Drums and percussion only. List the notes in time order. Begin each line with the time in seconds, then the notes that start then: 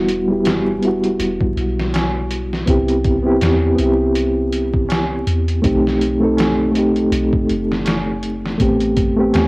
0.08 closed hi-hat
0.45 snare, closed hi-hat, tabla na, tabla ge
0.83 closed hi-hat
1.04 closed hi-hat
1.20 closed hi-hat
1.40 kick
1.57 closed hi-hat
1.79 snare
1.94 snare, closed hi-hat, tabla na
2.30 closed hi-hat
2.53 snare
2.67 kick, closed hi-hat
2.88 closed hi-hat
3.04 kick, closed hi-hat, tabla ge
3.41 snare, closed hi-hat, tabla na, tabla ge
3.78 closed hi-hat
4.15 closed hi-hat
4.53 closed hi-hat
4.74 kick
4.89 snare, closed hi-hat, tabla na
5.27 closed hi-hat
5.48 closed hi-hat
5.64 kick, closed hi-hat
5.87 snare
6.01 closed hi-hat
6.37 snare, closed hi-hat, tabla na, tabla ge
6.76 closed hi-hat
6.96 closed hi-hat
7.12 closed hi-hat
7.33 kick
7.49 closed hi-hat
7.72 snare
7.85 snare, closed hi-hat, tabla na
8.23 closed hi-hat
8.46 snare
8.60 kick, closed hi-hat
8.81 closed hi-hat
8.97 kick, closed hi-hat, tabla ge
9.33 snare, closed hi-hat, tabla na, tabla ge